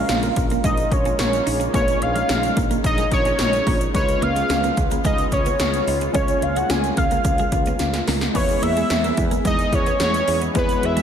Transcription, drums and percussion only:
0.09 snare, closed hi-hat, tambourine, shaker
0.23 closed hi-hat, shaker
0.36 kick, closed hi-hat, shaker
0.50 closed hi-hat, shaker
0.64 kick, closed hi-hat, shaker
0.77 closed hi-hat, shaker
0.92 kick, closed hi-hat, shaker
1.05 closed hi-hat, shaker
1.19 snare, closed hi-hat, tambourine, shaker
1.33 closed hi-hat, shaker
1.47 open hi-hat
1.61 closed hi-hat, shaker
1.74 kick, closed hi-hat, shaker
1.88 closed hi-hat, shaker
2.02 closed hi-hat
2.16 closed hi-hat, shaker
2.29 snare, closed hi-hat, tambourine, shaker
2.43 closed hi-hat, shaker
2.57 kick, closed hi-hat, shaker
2.71 closed hi-hat, shaker
2.84 kick, closed hi-hat, shaker
2.98 closed hi-hat, shaker
3.12 kick, closed hi-hat, shaker
3.25 closed hi-hat, shaker
3.39 snare, closed hi-hat, tambourine, shaker
3.53 closed hi-hat, shaker
3.67 kick, open hi-hat
3.81 closed hi-hat, shaker
3.95 kick, closed hi-hat, shaker
4.09 closed hi-hat, shaker
4.22 closed hi-hat
4.36 closed hi-hat, shaker
4.50 snare, closed hi-hat, tambourine, shaker
4.63 closed hi-hat, shaker
4.77 kick, closed hi-hat, shaker
4.91 closed hi-hat, shaker
5.04 kick, closed hi-hat, shaker
5.18 closed hi-hat, shaker
5.32 kick, closed hi-hat, shaker
5.46 closed hi-hat, shaker
5.59 snare, closed hi-hat, tambourine, shaker
5.74 closed hi-hat, shaker
5.88 open hi-hat
6.00 closed hi-hat, shaker
6.14 kick, closed hi-hat, shaker
6.28 closed hi-hat, shaker
6.42 closed hi-hat
6.56 closed hi-hat, shaker
6.70 snare, closed hi-hat, tambourine, shaker
6.84 closed hi-hat, shaker
6.97 kick, closed hi-hat, shaker
7.11 closed hi-hat, shaker
7.24 kick, closed hi-hat, shaker
7.38 closed hi-hat, shaker
7.52 kick, closed hi-hat, shaker
7.66 closed hi-hat, shaker
7.79 snare, closed hi-hat, shaker
7.94 snare, closed hi-hat, shaker
8.08 snare, open hi-hat
8.21 snare, closed hi-hat, shaker
8.35 kick, crash, shaker
8.49 closed hi-hat, shaker
8.63 closed hi-hat
8.77 closed hi-hat, shaker
8.90 snare, closed hi-hat, tambourine, shaker
9.04 closed hi-hat, shaker
9.17 kick, closed hi-hat, shaker
9.31 closed hi-hat, shaker
9.45 kick, closed hi-hat, shaker
9.59 closed hi-hat, shaker
9.73 kick, closed hi-hat, shaker
9.86 closed hi-hat, shaker
10.00 snare, closed hi-hat, tambourine, shaker
10.14 closed hi-hat, shaker
10.28 open hi-hat
10.42 closed hi-hat, shaker
10.55 kick, closed hi-hat, shaker
10.69 closed hi-hat, shaker
10.83 closed hi-hat
10.97 closed hi-hat, shaker

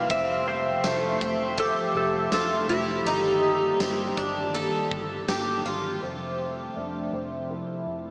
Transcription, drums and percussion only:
0.10 kick, ride
0.84 snare, ride, tambourine
1.21 kick
1.58 kick, ride
2.32 snare, ride, tambourine
3.06 ride
3.80 snare, ride, tambourine
4.17 kick
4.55 ride
4.91 kick
5.28 snare, ride, tambourine

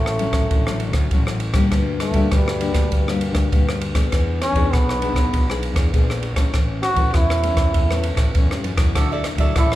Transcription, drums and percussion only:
0.06 cross-stick
0.19 ride
0.33 kick, cross-stick, ride
0.51 kick, ride
0.67 cross-stick
0.80 ride
0.93 kick, cross-stick, ride
1.11 kick, ride
1.27 cross-stick
1.40 ride
1.54 kick, cross-stick, ride
1.71 kick, cross-stick, ride
2.00 cross-stick, ride
2.14 kick, ride
2.32 kick, cross-stick, ride
2.48 cross-stick
2.61 ride
2.74 kick, cross-stick, ride
2.92 kick, ride
3.08 cross-stick
3.21 ride
3.35 kick, cross-stick, ride
3.52 kick, ride
3.69 cross-stick
3.81 ride
3.95 kick, cross-stick, ride
4.12 kick, cross-stick, ride
4.42 cross-stick, ride
4.55 kick, ride
4.73 kick, cross-stick, ride
4.89 cross-stick
5.02 ride
5.16 kick, cross-stick, ride
5.33 kick, ride
5.50 cross-stick
5.63 ride
5.76 kick, cross-stick, ride
5.94 kick, ride
6.10 cross-stick
6.23 ride
6.36 kick, cross-stick, ride
6.54 kick, cross-stick, ride
6.83 cross-stick, ride
6.96 kick, ride
7.14 kick, cross-stick, ride
7.30 cross-stick
7.43 ride
7.57 kick, cross-stick, ride
7.74 kick, ride
7.91 cross-stick
8.03 ride
8.17 kick, cross-stick, ride
8.35 kick, ride
8.51 cross-stick
8.64 ride
8.78 kick, cross-stick, ride
8.95 kick, cross-stick, ride
9.24 cross-stick, ride
9.38 kick, ride
9.56 kick, cross-stick, ride
9.72 cross-stick

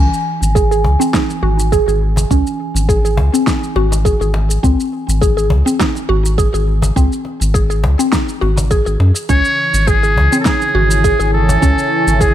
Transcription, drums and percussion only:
0.14 shaker
0.43 shaker
0.56 kick, shaker
0.72 shaker
0.84 cajon bass
1.01 shaker
1.14 kick, snare, shaker
1.30 cajon slap, shaker
1.59 shaker
1.72 kick, shaker
1.89 shaker
2.16 cajon bass, cajon slap, shaker
2.31 kick, shaker
2.47 shaker
2.76 shaker
2.89 kick, shaker
3.05 shaker
3.17 cajon bass
3.35 shaker
3.47 kick, snare, shaker
3.63 shaker
3.76 cajon slap
3.92 cajon slap, shaker
4.05 kick, shaker
4.22 shaker
4.34 cajon slap
4.51 shaker
4.64 kick, shaker
4.80 shaker
5.09 shaker
5.22 kick, shaker
5.38 shaker
5.50 cajon bass
5.67 shaker
5.80 kick, snare, shaker
5.95 cajon slap, shaker
6.25 shaker
6.38 kick, shaker
6.55 shaker
6.82 cajon bass, cajon slap, shaker
6.96 kick, shaker
7.13 shaker
7.25 cajon slap
7.42 shaker
7.55 kick, shaker
7.71 shaker
7.84 cajon bass
8.00 shaker
8.13 kick, snare, shaker
8.29 shaker
8.42 cajon slap
8.58 cajon bass, cajon slap, shaker
8.71 kick, shaker
8.87 shaker
9.00 cajon slap
9.16 shaker
9.29 kick, shaker
9.45 shaker
9.74 shaker
9.88 kick, shaker
10.04 shaker
10.17 cajon bass
10.33 shaker
10.45 kick, snare, shaker
10.62 cajon slap, shaker
10.91 shaker
11.04 kick, shaker
11.20 shaker
11.49 cajon bass, cajon slap, shaker
11.63 kick, shaker
11.79 shaker
12.08 shaker
12.21 kick, shaker

